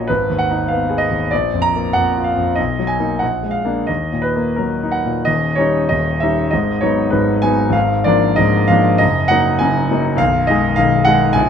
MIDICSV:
0, 0, Header, 1, 2, 480
1, 0, Start_track
1, 0, Key_signature, -6, "minor"
1, 0, Tempo, 610998
1, 73, Time_signature, 2, 2, 24, 8
1, 1032, Tempo, 634249
1, 2472, Tempo, 681044
1, 3912, Tempo, 636943
1, 4392, Tempo, 619195
1, 7272, Tempo, 586510
1, 8813, End_track
2, 0, Start_track
2, 0, Title_t, "Grand piano"
2, 0, Program_c, 0, 0
2, 0, Control_c, 0, 64, 127
2, 0, Note_on_c, 0, 34, 42
2, 0, Note_on_c, 0, 46, 35
2, 0, Note_on_c, 0, 58, 37
2, 0, Note_on_c, 0, 61, 39
2, 0, Note_on_c, 0, 66, 41
2, 0, Note_on_c, 0, 73, 60
2, 0, Note_on_c, 0, 75, 65
2, 0, Note_on_c, 0, 77, 56
2, 58, Note_on_c, 0, 71, 62
2, 77, Note_on_c, 0, 32, 46
2, 87, Control_c, 0, 64, 0
2, 89, Note_off_c, 0, 75, 0
2, 90, Note_off_c, 0, 58, 0
2, 90, Note_off_c, 0, 66, 0
2, 92, Note_off_c, 0, 46, 0
2, 92, Note_off_c, 0, 77, 0
2, 93, Note_off_c, 0, 61, 0
2, 94, Note_off_c, 0, 34, 0
2, 95, Note_off_c, 0, 73, 0
2, 219, Control_c, 0, 64, 127
2, 234, Note_on_c, 0, 39, 36
2, 303, Note_on_c, 0, 78, 67
2, 309, Note_off_c, 0, 71, 0
2, 395, Note_on_c, 0, 63, 38
2, 491, Note_off_c, 0, 39, 0
2, 535, Note_on_c, 0, 77, 55
2, 548, Note_off_c, 0, 78, 0
2, 555, Note_on_c, 0, 59, 41
2, 648, Note_off_c, 0, 63, 0
2, 704, Note_on_c, 0, 68, 41
2, 770, Note_on_c, 0, 75, 64
2, 780, Note_off_c, 0, 77, 0
2, 806, Note_off_c, 0, 59, 0
2, 873, Note_on_c, 0, 39, 36
2, 963, Note_off_c, 0, 68, 0
2, 1005, Note_off_c, 0, 32, 0
2, 1022, Note_off_c, 0, 75, 0
2, 1028, Note_on_c, 0, 74, 65
2, 1033, Note_off_c, 0, 39, 0
2, 1042, Note_on_c, 0, 34, 45
2, 1047, Control_c, 0, 64, 0
2, 1150, Control_c, 0, 64, 127
2, 1200, Note_on_c, 0, 41, 41
2, 1262, Note_on_c, 0, 82, 72
2, 1270, Note_off_c, 0, 74, 0
2, 1368, Note_on_c, 0, 58, 41
2, 1453, Note_off_c, 0, 41, 0
2, 1501, Note_on_c, 0, 78, 71
2, 1507, Note_off_c, 0, 82, 0
2, 1518, Note_on_c, 0, 41, 39
2, 1616, Note_off_c, 0, 58, 0
2, 1682, Note_on_c, 0, 65, 39
2, 1734, Note_on_c, 0, 77, 57
2, 1745, Note_off_c, 0, 78, 0
2, 1770, Note_off_c, 0, 41, 0
2, 1823, Note_on_c, 0, 41, 37
2, 1931, Note_off_c, 0, 65, 0
2, 1966, Note_off_c, 0, 34, 0
2, 1971, Note_on_c, 0, 75, 58
2, 1981, Note_off_c, 0, 77, 0
2, 1986, Note_off_c, 0, 41, 0
2, 1991, Note_on_c, 0, 35, 47
2, 2004, Control_c, 0, 64, 0
2, 2139, Control_c, 0, 64, 127
2, 2150, Note_on_c, 0, 54, 38
2, 2211, Note_on_c, 0, 80, 65
2, 2219, Note_off_c, 0, 75, 0
2, 2306, Note_on_c, 0, 58, 34
2, 2307, Note_on_c, 0, 63, 38
2, 2406, Note_off_c, 0, 54, 0
2, 2453, Note_off_c, 0, 58, 0
2, 2453, Note_on_c, 0, 78, 52
2, 2454, Note_off_c, 0, 63, 0
2, 2457, Note_off_c, 0, 35, 0
2, 2462, Note_off_c, 0, 80, 0
2, 2472, Note_on_c, 0, 34, 42
2, 2484, Control_c, 0, 64, 0
2, 2610, Control_c, 0, 64, 127
2, 2621, Note_on_c, 0, 56, 32
2, 2677, Note_on_c, 0, 77, 60
2, 2696, Note_off_c, 0, 78, 0
2, 2777, Note_on_c, 0, 58, 34
2, 2781, Note_on_c, 0, 62, 35
2, 2878, Note_off_c, 0, 56, 0
2, 2925, Note_off_c, 0, 58, 0
2, 2928, Note_off_c, 0, 62, 0
2, 2931, Note_on_c, 0, 75, 50
2, 2932, Note_off_c, 0, 34, 0
2, 2932, Note_off_c, 0, 77, 0
2, 2946, Note_on_c, 0, 39, 41
2, 2958, Control_c, 0, 64, 0
2, 3095, Control_c, 0, 64, 127
2, 3113, Note_on_c, 0, 46, 34
2, 3177, Note_on_c, 0, 71, 54
2, 3276, Note_on_c, 0, 58, 35
2, 3372, Note_off_c, 0, 46, 0
2, 3420, Note_on_c, 0, 70, 44
2, 3427, Note_off_c, 0, 75, 0
2, 3428, Note_off_c, 0, 71, 0
2, 3439, Note_on_c, 0, 54, 31
2, 3534, Note_off_c, 0, 58, 0
2, 3610, Note_on_c, 0, 63, 35
2, 3670, Note_off_c, 0, 70, 0
2, 3670, Note_on_c, 0, 78, 55
2, 3696, Note_off_c, 0, 54, 0
2, 3765, Note_on_c, 0, 46, 32
2, 3857, Note_off_c, 0, 63, 0
2, 3883, Note_off_c, 0, 39, 0
2, 3905, Note_on_c, 0, 75, 67
2, 3906, Note_off_c, 0, 78, 0
2, 3914, Note_off_c, 0, 46, 0
2, 3921, Note_on_c, 0, 27, 43
2, 3921, Note_on_c, 0, 39, 46
2, 3922, Control_c, 0, 64, 0
2, 4062, Control_c, 0, 64, 127
2, 4134, Note_on_c, 0, 73, 62
2, 4147, Note_off_c, 0, 75, 0
2, 4149, Note_off_c, 0, 27, 0
2, 4149, Note_off_c, 0, 39, 0
2, 4151, Note_on_c, 0, 55, 39
2, 4153, Note_on_c, 0, 61, 36
2, 4157, Note_on_c, 0, 63, 39
2, 4367, Note_off_c, 0, 55, 0
2, 4369, Note_off_c, 0, 61, 0
2, 4371, Note_off_c, 0, 63, 0
2, 4383, Note_off_c, 0, 73, 0
2, 4386, Note_on_c, 0, 75, 62
2, 4399, Note_on_c, 0, 39, 39
2, 4403, Note_on_c, 0, 27, 41
2, 4629, Note_on_c, 0, 76, 66
2, 4632, Note_off_c, 0, 39, 0
2, 4633, Note_off_c, 0, 75, 0
2, 4634, Note_off_c, 0, 27, 0
2, 4644, Note_on_c, 0, 55, 38
2, 4644, Note_on_c, 0, 61, 38
2, 4649, Note_on_c, 0, 63, 41
2, 4856, Note_off_c, 0, 55, 0
2, 4856, Note_off_c, 0, 61, 0
2, 4858, Note_off_c, 0, 63, 0
2, 4865, Note_on_c, 0, 75, 60
2, 4872, Note_off_c, 0, 76, 0
2, 4884, Note_on_c, 0, 32, 48
2, 4884, Note_on_c, 0, 44, 44
2, 4888, Control_c, 0, 64, 0
2, 5002, Control_c, 0, 64, 127
2, 5098, Note_on_c, 0, 73, 64
2, 5106, Note_off_c, 0, 75, 0
2, 5109, Note_off_c, 0, 32, 0
2, 5109, Note_off_c, 0, 44, 0
2, 5114, Note_on_c, 0, 54, 39
2, 5117, Note_on_c, 0, 59, 38
2, 5117, Note_on_c, 0, 63, 40
2, 5327, Note_off_c, 0, 54, 0
2, 5328, Note_on_c, 0, 71, 54
2, 5329, Note_off_c, 0, 59, 0
2, 5329, Note_off_c, 0, 63, 0
2, 5342, Note_off_c, 0, 73, 0
2, 5342, Note_on_c, 0, 32, 47
2, 5346, Note_on_c, 0, 44, 44
2, 5572, Note_on_c, 0, 80, 79
2, 5580, Note_off_c, 0, 32, 0
2, 5580, Note_off_c, 0, 71, 0
2, 5581, Note_off_c, 0, 44, 0
2, 5584, Note_on_c, 0, 54, 38
2, 5589, Note_on_c, 0, 59, 41
2, 5592, Note_on_c, 0, 63, 44
2, 5789, Note_on_c, 0, 32, 53
2, 5804, Note_off_c, 0, 54, 0
2, 5807, Note_off_c, 0, 59, 0
2, 5808, Note_off_c, 0, 63, 0
2, 5810, Note_on_c, 0, 77, 73
2, 5822, Note_off_c, 0, 80, 0
2, 5829, Note_on_c, 0, 44, 43
2, 5846, Control_c, 0, 64, 0
2, 5945, Control_c, 0, 64, 127
2, 6041, Note_off_c, 0, 32, 0
2, 6056, Note_on_c, 0, 74, 73
2, 6059, Note_off_c, 0, 77, 0
2, 6061, Note_off_c, 0, 44, 0
2, 6066, Note_on_c, 0, 53, 43
2, 6074, Note_on_c, 0, 58, 43
2, 6077, Note_on_c, 0, 62, 48
2, 6283, Note_off_c, 0, 53, 0
2, 6287, Note_off_c, 0, 58, 0
2, 6288, Note_off_c, 0, 62, 0
2, 6301, Note_on_c, 0, 75, 70
2, 6302, Note_off_c, 0, 74, 0
2, 6315, Note_on_c, 0, 44, 50
2, 6319, Note_on_c, 0, 32, 49
2, 6546, Note_on_c, 0, 77, 74
2, 6548, Note_off_c, 0, 44, 0
2, 6548, Note_off_c, 0, 75, 0
2, 6550, Note_off_c, 0, 32, 0
2, 6563, Note_on_c, 0, 53, 45
2, 6569, Note_on_c, 0, 58, 43
2, 6571, Note_on_c, 0, 62, 49
2, 6779, Note_off_c, 0, 53, 0
2, 6782, Note_off_c, 0, 58, 0
2, 6783, Note_off_c, 0, 62, 0
2, 6784, Note_on_c, 0, 75, 77
2, 6794, Note_off_c, 0, 77, 0
2, 6801, Note_on_c, 0, 30, 56
2, 6804, Note_on_c, 0, 42, 51
2, 6814, Control_c, 0, 64, 0
2, 6931, Control_c, 0, 64, 127
2, 7015, Note_on_c, 0, 78, 83
2, 7030, Note_off_c, 0, 75, 0
2, 7031, Note_off_c, 0, 30, 0
2, 7032, Note_off_c, 0, 42, 0
2, 7034, Note_on_c, 0, 54, 45
2, 7037, Note_on_c, 0, 58, 46
2, 7038, Note_on_c, 0, 63, 49
2, 7246, Note_off_c, 0, 54, 0
2, 7248, Note_off_c, 0, 58, 0
2, 7248, Note_off_c, 0, 63, 0
2, 7253, Note_on_c, 0, 80, 80
2, 7260, Note_off_c, 0, 78, 0
2, 7269, Note_on_c, 0, 30, 57
2, 7269, Note_on_c, 0, 42, 50
2, 7507, Note_off_c, 0, 80, 0
2, 7508, Note_off_c, 0, 30, 0
2, 7508, Note_off_c, 0, 42, 0
2, 7517, Note_on_c, 0, 54, 48
2, 7521, Note_on_c, 0, 58, 46
2, 7522, Note_on_c, 0, 63, 47
2, 7723, Note_on_c, 0, 35, 59
2, 7735, Note_off_c, 0, 54, 0
2, 7737, Note_off_c, 0, 58, 0
2, 7737, Note_on_c, 0, 77, 89
2, 7738, Note_off_c, 0, 63, 0
2, 7756, Note_on_c, 0, 23, 56
2, 7772, Control_c, 0, 64, 0
2, 7907, Control_c, 0, 64, 127
2, 7970, Note_off_c, 0, 35, 0
2, 7975, Note_on_c, 0, 75, 72
2, 7985, Note_off_c, 0, 77, 0
2, 7987, Note_off_c, 0, 23, 0
2, 7995, Note_on_c, 0, 56, 48
2, 7997, Note_on_c, 0, 51, 48
2, 7999, Note_on_c, 0, 68, 50
2, 8207, Note_off_c, 0, 56, 0
2, 8208, Note_off_c, 0, 51, 0
2, 8210, Note_off_c, 0, 68, 0
2, 8211, Note_on_c, 0, 77, 84
2, 8221, Note_off_c, 0, 75, 0
2, 8226, Note_on_c, 0, 35, 53
2, 8228, Note_on_c, 0, 23, 56
2, 8446, Note_on_c, 0, 78, 84
2, 8459, Note_off_c, 0, 35, 0
2, 8459, Note_off_c, 0, 77, 0
2, 8460, Note_off_c, 0, 23, 0
2, 8460, Note_on_c, 0, 51, 47
2, 8462, Note_on_c, 0, 56, 48
2, 8471, Note_on_c, 0, 68, 51
2, 8677, Note_on_c, 0, 80, 86
2, 8680, Note_off_c, 0, 51, 0
2, 8681, Note_off_c, 0, 56, 0
2, 8686, Note_off_c, 0, 68, 0
2, 8691, Note_on_c, 0, 22, 53
2, 8696, Note_on_c, 0, 34, 61
2, 8697, Note_off_c, 0, 78, 0
2, 8720, Control_c, 0, 64, 0
2, 8813, Note_off_c, 0, 22, 0
2, 8813, Note_off_c, 0, 34, 0
2, 8813, Note_off_c, 0, 80, 0
2, 8813, End_track
0, 0, End_of_file